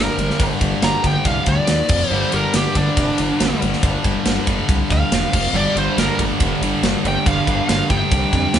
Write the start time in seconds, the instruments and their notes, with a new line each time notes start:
Already playing: distorted electric guitar G2 D3 G3, lead electric guitar A#4
0.00 distorted electric guitar G3
0.18 analog synth bass G1, distorted electric guitar G2 D3 G3, ride
0.30 snare
0.39 analog synth bass G1, distorted electric guitar G2 D3 G3, kick, ride
0.60 analog synth bass G1, distorted electric guitar G2 D3 G3, kick, ride
0.82 analog synth bass G1, distorted electric guitar G2 D3 G3, lead electric guitar A#5, snare, ride
1.03 analog synth bass G1, distorted electric guitar G2 D3 G3, lead electric guitar G5, kick, ride
1.24 analog synth bass C2, distorted electric guitar G2 D3 G3, lead electric guitar F5, kick, ride
1.46 analog synth bass D2, distorted electric guitar G2 D3 G3, lead electric guitar D5, kick, ride
1.67 analog synth bass D#2, distorted electric guitar D#3 A#3 D#4, snare, ride
1.88 analog synth bass F1, distorted electric guitar F2 C3 F3, kick, crash
2.11 analog synth bass G1, distorted electric guitar G2 D3 G3, lead electric guitar C5
2.32 analog synth bass G1, distorted electric guitar G2 D3 G3, lead electric guitar A#4, ride
2.54 analog synth bass G1, distorted electric guitar G2 D3 G3, lead electric guitar G4, snare, ride
2.75 analog synth bass G1, distorted electric guitar G2 D3 G3, lead electric guitar D4, kick, ride
2.96 analog synth bass F1, distorted electric guitar G2 D3 G3, kick, ride
3.18 analog synth bass G1, distorted electric guitar G2 D3 G3, ride
3.39 analog synth bass G1, distorted electric guitar G2 D3 G3, snare, ride
3.62 analog synth bass G1, distorted electric guitar G2 D3 G3, ride
3.73 snare
3.82 analog synth bass G1, distorted electric guitar G2 D3 G3, kick, ride
4.04 analog synth bass G1, distorted electric guitar G2 D3 G3, kick, ride
4.26 analog synth bass G1, distorted electric guitar G2 D3 G3, snare, ride
4.47 analog synth bass G1, distorted electric guitar G2 D3 G3, kick, ride
4.69 analog synth bass C2, distorted electric guitar G2 D3 G3, kick, ride
4.90 analog synth bass D2, distorted electric guitar G2 D3 G3, lead electric guitar F5, kick, ride
5.11 analog synth bass E1, distorted electric guitar G2 D3 G3, snare, ride
5.33 analog synth bass F1, distorted electric guitar F2 C3 F3, kick, crash
5.53 analog synth bass G1, distorted electric guitar G2 D3 G3, lead electric guitar D5
5.75 analog synth bass G1, distorted electric guitar G2 D3 G3, lead electric guitar C5, ride
5.97 analog synth bass G1, distorted electric guitar G2 D3 G3, lead electric guitar A#4, snare, ride
6.19 analog synth bass G1, distorted electric guitar G2 D3 G3, kick, ride
6.40 analog synth bass F1, distorted electric guitar G2 D3 G3, kick, ride
6.61 analog synth bass G1, distorted electric guitar G2 D3 G3, ride
6.82 analog synth bass G1, distorted electric guitar G2 D3 G3, snare, ride
7.04 analog synth bass G1, distorted electric guitar G2 D3 G3, ride
7.08 lead electric guitar G5
7.25 analog synth bass G1, distorted electric guitar G2 D3 G3, lead electric guitar F5, kick, ride
7.46 analog synth bass G1, distorted electric guitar G2 D3 G3, kick, ride
7.68 analog synth bass G1, distorted electric guitar G2 D3 G3, lead electric guitar F5, snare, ride
7.90 analog synth bass G1, distorted electric guitar G2 D3 G3, lead electric guitar G5, kick, ride
8.11 analog synth bass C2, distorted electric guitar G2 D3 G3, kick, ride
8.32 analog synth bass F2, distorted electric guitar G2 D3 G3, kick, ride
8.54 analog synth bass D#2, distorted electric guitar D#3 A#3 D#4, snare, ride